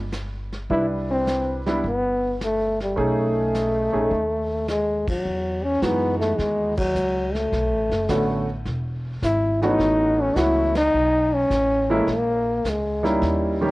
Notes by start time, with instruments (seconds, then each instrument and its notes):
Already playing: upright bass G1
0.12 snare, hi-hat pedal
0.53 snare
0.70 upright bass C2, grand piano G3 D4 E4 B4, trombone E4, brush sweep, kick
1.11 trombone C4
1.27 snare, hi-hat pedal
1.66 grand piano G3 B3 D4 E4, snare
1.84 upright bass G1, trombone B3, brush sweep, kick
2.41 trombone A3, snare, hi-hat pedal
2.80 trombone G3, snare
2.96 upright bass B1, grand piano A3 C#4 D#4 G#4, brush sweep, kick
3.00 trombone A3
3.55 snare, hi-hat pedal
3.92 upright bass A#1, grand piano A3 C#4 D#4 G#4
4.11 upright bass D#2, brush sweep, kick
4.68 trombone G#3, snare, hi-hat pedal
5.07 trombone F#3, kick, ride
5.25 upright bass E2, brush sweep
5.63 trombone C#4
5.82 upright bass F#2, grand piano E3 G#3 B3 D#4 F#4, trombone B3, kick, snare, hi-hat pedal
6.19 trombone A3, snare
6.38 upright bass D#2, trombone G#3, brush sweep, kick, snare
6.77 trombone F#3, kick, ride
6.95 upright bass C#2, hi-hat pedal
7.35 trombone A3, snare
7.52 upright bass B1, brush sweep, kick, snare
7.71 upright bass A1
7.90 upright bass F#1, snare
8.09 upright bass A1, grand piano D3 A3 B3 C#4 F#4, kick, snare, hi-hat pedal
8.65 upright bass E1, brush sweep, kick, snare
9.22 upright bass G#1, trombone E4, kick, snare, hi-hat pedal
9.62 grand piano E3 A3 B3 C#4 F#4, trombone D#4, snare
9.79 upright bass A1, brush sweep, kick, snare
10.22 trombone C#4
10.35 upright bass C#2, grand piano E3 A3 B3 C#4 F#4, trombone E4, kick, snare, hi-hat pedal
10.75 trombone D#4, snare, ride
10.93 upright bass B1, brush sweep
11.34 trombone C#4
11.50 upright bass A1, kick, snare, hi-hat pedal
11.90 grand piano E3 G#3 A#3 C#4 E4, trombone A3
12.07 upright bass A#1, brush sweep, kick, snare
12.11 trombone A#3
12.64 upright bass C#2, kick, snare, hi-hat pedal
12.70 trombone G#3
13.03 grand piano G3 A#3 C#4 D#4 E4, snare
13.09 trombone G3
13.22 upright bass D#2, brush sweep, kick, snare
13.61 grand piano D#3 G3 A#3 C#4 G4